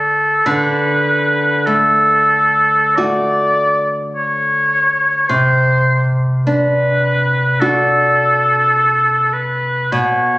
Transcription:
0.00 0.41 D3 soft
0.00 0.41 A3 soft
0.00 0.41 F#4 soft
0.00 0.47 A4 medium
0.46 5.26 D3 medium
0.46 1.68 B4 medium
1.66 2.96 A3 medium
1.66 2.97 A4 medium
2.96 5.26 A3 soft
2.96 5.26 F#4 medium
2.96 3.99 D5 medium
4.16 5.30 C#5 medium
5.28 9.88 C3 medium
5.28 6.18 C5 medium
6.46 7.60 D4 medium
6.46 7.62 B4 medium
7.60 9.88 D4 medium
7.60 9.88 F#4 medium
7.60 9.35 A4 loud
9.33 9.93 B4 medium
9.92 10.38 B2 medium
9.92 10.38 C#5 medium

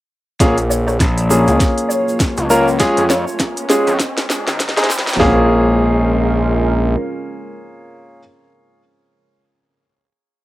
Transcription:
0.40 0.98 A#1 medium
0.40 0.54 A#3 medium
0.40 0.54 C#4 medium
0.40 0.54 F4 medium
0.40 3.97 F4 medium
0.40 0.55 G#4 medium
0.40 3.97 C#5 medium
0.40 kick medium
0.40 snare soft
0.40 closed hi-hat medium
0.40 riser medium
0.40 shaker soft
0.57 closed hi-hat medium
0.57 shaker soft
0.70 0.81 C#5 medium
0.70 shaker medium
0.87 0.95 C#5 medium
0.87 cross-stick medium
0.87 shaker soft
1.00 1.45 A#1 medium
1.00 kick medium
1.00 snare soft
1.00 closed hi-hat medium
1.00 shaker soft
1.18 closed hi-hat medium
1.18 shaker soft
1.30 2.47 A#3 medium
1.30 2.47 C#4 medium
1.30 2.47 F4 medium
1.30 2.47 G#4 medium
1.30 shaker medium
1.48 1.58 C#2 medium
1.48 closed hi-hat soft
1.48 shaker soft
1.59 2.79 F#3 medium
1.59 2.79 A#3 medium
1.59 kick medium
1.59 snare medium
1.59 closed hi-hat medium
1.59 shaker soft
1.78 closed hi-hat medium
1.78 shaker soft
1.89 2.13 C#5 medium
1.89 shaker medium
2.08 shaker soft
2.20 kick medium
2.20 snare medium
2.20 closed hi-hat medium
2.20 shaker medium
2.37 2.78 C#2 loud
2.37 closed hi-hat medium
2.37 shaker soft
2.50 2.64 A#3 medium
2.50 2.64 C#4 medium
2.50 2.65 F4 medium
2.50 2.64 A#4 loud
2.50 shaker medium
2.68 shaker soft
2.79 3.01 G#3 medium
2.79 5.18 G#3 medium
2.79 3.01 C#4 medium
2.79 3.01 F4 medium
2.79 3.01 G#4 loud
2.79 kick medium
2.79 snare medium
2.79 closed hi-hat medium
2.79 shaker medium
2.97 3.25 F2 loud
2.97 closed hi-hat medium
2.97 shaker soft
3.09 3.95 C#5 medium
3.09 snare medium
3.09 shaker medium
3.27 shaker soft
3.39 kick medium
3.39 snare medium
3.39 closed hi-hat medium
3.39 shaker soft
3.57 closed hi-hat medium
3.57 shaker soft
3.70 3.91 G#3 medium
3.70 3.91 C#4 medium
3.70 3.91 F4 medium
3.70 3.91 G#4 medium
3.70 snare medium
3.70 shaker loud
3.87 3.98 F2 loud
3.87 closed hi-hat soft
3.87 shaker soft
4.00 5.19 C4 medium
4.00 5.19 C5 medium
4.00 kick medium
4.00 snare medium
4.00 closed hi-hat medium
4.00 shaker medium
4.18 snare medium
4.18 closed hi-hat medium
4.18 shaker soft
4.30 snare loud
4.30 shaker loud
4.47 4.75 G#1 loud
4.47 snare medium
4.47 shaker soft
4.60 kick loud
4.60 snare loud
4.60 closed hi-hat medium
4.60 shaker soft
4.69 snare medium
4.77 5.18 G#1 loud
4.77 4.88 G#3 medium
4.77 4.88 C4 medium
4.77 4.88 D#4 medium
4.77 4.87 G#4 loud
4.77 snare medium
4.77 closed hi-hat medium
4.77 shaker soft
4.84 snare loud
4.90 snare loud
4.90 shaker medium
4.98 snare loud
5.07 snare loud
5.07 shaker soft
5.13 snare loud
5.19 6.96 A#1 loud
5.19 8.20 G#3 medium
5.19 8.19 A#3 medium
5.19 8.19 C#4 medium
5.19 8.20 C#4 medium
5.19 8.19 F4 medium
5.19 8.19 G#4 loud
5.19 8.20 A#4 loud
5.19 snare loud
5.19 floor tom loud

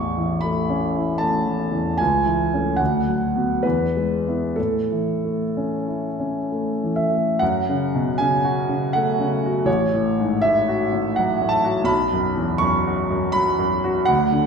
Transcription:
0.00 1.91 A1 medium
0.00 0.32 E2 soft
0.00 0.41 C#6 medium
0.17 0.59 E3 soft
0.41 0.85 A3 soft
0.41 1.19 B5 medium
0.70 1.10 C#4 soft
0.96 1.36 E4 soft
1.18 1.62 A3 soft
1.18 1.98 A5 medium
1.46 1.89 E3 soft
1.72 1.99 E2 soft
1.98 2.78 C#2 medium
1.98 2.79 G#5 medium
2.26 2.69 E3 soft
2.54 2.78 A3 soft
2.54 2.78 C#4 soft
2.76 3.61 D2 medium
2.76 3.62 F#5 medium
3.08 3.52 F#3 soft
3.36 3.61 B3 soft
3.36 3.62 F#4 soft
3.63 4.55 E2 soft
3.63 4.56 B4 medium
3.97 4.45 G#3 soft
4.27 4.55 B3 soft
4.27 4.55 E4 soft
4.56 7.38 A2 soft
4.56 6.50 A4 medium
4.92 5.43 E3 soft
5.25 5.75 A3 soft
5.57 6.07 C#4 soft
5.88 6.38 E4 soft
6.20 6.69 C#4 soft
6.52 7.02 A3 soft
6.83 7.31 E3 soft
6.96 7.40 E5 medium
7.15 7.42 A3 soft
7.39 9.63 F#2 soft
7.39 8.18 F#5 medium
7.69 8.09 C#3 soft
7.95 8.20 B2 soft
8.18 8.60 C#3 soft
8.18 8.93 G#5 medium
8.44 8.84 F#4 soft
8.69 9.08 C#3 soft
8.93 9.33 A3 soft
8.93 9.67 F#5 medium
9.20 9.58 C#3 soft
9.46 9.69 F#4 soft
9.65 11.85 A1 soft
9.65 10.41 C#5 medium
9.94 10.32 A2 soft
10.20 10.43 G#2 soft
10.42 10.83 A2 soft
10.42 11.17 E5 medium
10.68 11.08 F#4 soft
10.93 11.32 A2 soft
11.16 11.57 F#3 soft
11.16 11.53 F#5 medium
11.42 11.80 A2 soft
11.49 11.88 A5 medium
11.64 11.89 F#4 soft
11.84 14.03 B1 medium
11.84 12.61 B5 medium
12.13 12.53 F#2 soft
12.37 12.62 E2 soft
12.58 13.01 F#2 soft
12.58 13.34 C#6 medium
12.87 13.26 F#4 soft
13.10 13.50 F#2 soft
13.32 13.75 F#3 soft
13.32 14.07 B5 medium
13.59 13.99 F#2 soft
13.84 14.09 F#4 medium
14.05 14.47 D2 medium
14.05 14.47 F#5 medium
14.32 14.47 D3 soft

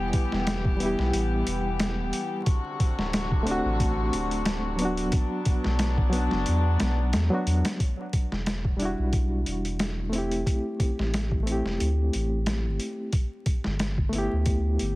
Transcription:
0.00 0.11 E1 medium
0.00 2.43 E3 medium
0.00 0.74 G3 medium
0.00 0.76 B3 medium
0.00 2.42 B3 medium
0.00 0.77 E4 medium
0.00 0.79 G4 medium
0.00 2.42 G4 medium
0.13 kick loud
0.13 closed hi-hat medium
0.32 0.95 E1 loud
0.32 snare medium
0.47 snare loud
0.47 closed hi-hat medium
0.65 kick loud
0.77 2.43 G3 medium
0.77 2.45 B3 medium
0.77 closed hi-hat medium
0.83 2.46 E4 medium
0.83 2.48 G4 medium
0.99 1.12 B1 medium
0.99 snare soft
1.13 1.43 A1 medium
1.13 closed hi-hat medium
1.47 2.00 E1 medium
1.47 closed hi-hat medium
1.80 snare loud
1.80 closed hi-hat medium
1.99 2.12 D1 medium
2.13 closed hi-hat medium
2.46 5.10 C3 medium
2.46 5.10 D3 medium
2.46 5.10 F#4 medium
2.46 kick loud
2.46 closed hi-hat medium
2.80 kick loud
2.80 closed hi-hat medium
2.98 3.61 D1 medium
2.98 snare medium
3.13 snare loud
3.13 closed hi-hat medium
3.32 kick loud
3.43 4.74 A3 medium
3.43 4.76 C4 medium
3.43 closed hi-hat medium
3.48 4.77 D4 medium
3.48 4.79 F#4 loud
3.65 4.10 A1 medium
3.80 kick loud
3.80 closed hi-hat medium
4.13 5.10 D1 medium
4.13 closed hi-hat medium
4.31 closed hi-hat soft
4.45 snare loud
4.45 closed hi-hat medium
4.76 6.08 F#3 medium
4.76 6.09 B3 medium
4.76 closed hi-hat medium
4.82 6.10 D4 medium
4.82 6.12 F#4 loud
4.97 closed hi-hat soft
5.12 7.78 F#3 medium
5.12 7.78 B3 medium
5.12 7.78 D4 loud
5.12 kick loud
5.12 closed hi-hat medium
5.45 kick loud
5.45 closed hi-hat medium
5.64 6.28 B1 medium
5.64 snare medium
5.79 snare loud
5.79 closed hi-hat medium
5.98 kick loud
6.10 7.26 F#3 medium
6.10 7.27 B3 medium
6.10 closed hi-hat medium
6.16 7.29 D4 medium
6.16 7.30 F#4 medium
6.31 6.45 F#1 loud
6.31 snare soft
6.46 6.77 E2 loud
6.46 closed hi-hat medium
6.80 7.13 B1 medium
6.80 snare loud
6.80 closed hi-hat medium
7.13 7.29 E2 medium
7.13 snare loud
7.13 closed hi-hat medium
7.30 7.77 F#3 loud
7.30 7.78 B3 medium
7.30 7.79 D4 medium
7.35 7.80 F#4 loud
7.47 7.63 E2 medium
7.47 closed hi-hat medium
7.65 snare loud
7.65 closed hi-hat medium
7.80 kick loud
7.80 closed hi-hat medium
8.13 kick medium
8.13 closed hi-hat medium
8.32 8.95 E1 medium
8.32 snare soft
8.46 snare loud
8.46 closed hi-hat medium
8.65 kick medium
8.77 10.08 G3 medium
8.77 10.09 D4 medium
8.77 closed hi-hat medium
8.82 10.11 E4 medium
8.82 10.12 F#4 medium
8.99 9.44 B1 medium
9.13 kick loud
9.13 closed hi-hat medium
9.46 10.44 E1 medium
9.46 closed hi-hat medium
9.65 closed hi-hat soft
9.79 snare loud
9.79 closed hi-hat medium
10.09 11.41 A3 medium
10.09 11.42 C4 medium
10.09 closed hi-hat medium
10.15 11.44 E4 medium
10.15 11.45 G4 medium
10.31 closed hi-hat soft
10.46 kick loud
10.46 closed hi-hat medium
10.80 kick medium
10.80 closed hi-hat medium
10.99 11.62 A1 medium
10.99 snare soft
11.14 snare loud
11.14 closed hi-hat medium
11.31 kick medium
11.43 13.09 A3 medium
11.43 13.11 C4 medium
11.47 13.13 E4 medium
11.47 closed hi-hat medium
11.52 13.14 G4 medium
11.65 11.78 E1 medium
11.65 snare soft
11.80 12.10 D2 medium
11.80 closed hi-hat medium
12.13 12.68 A1 medium
12.13 closed hi-hat medium
12.46 snare loud
12.46 closed hi-hat medium
12.66 12.79 G1 medium
12.80 closed hi-hat medium
13.13 kick loud
13.13 closed hi-hat medium
13.46 kick medium
13.46 closed hi-hat medium
13.64 14.28 G1 medium
13.64 snare soft
13.79 snare loud
13.79 closed hi-hat medium
13.98 kick medium
14.09 14.96 A3 medium
14.09 14.96 B3 medium
14.09 closed hi-hat medium
14.15 14.96 E4 medium
14.15 14.96 G4 loud
14.33 14.78 D2 medium
14.46 kick loud
14.46 closed hi-hat medium
14.79 14.96 G1 medium
14.79 closed hi-hat medium

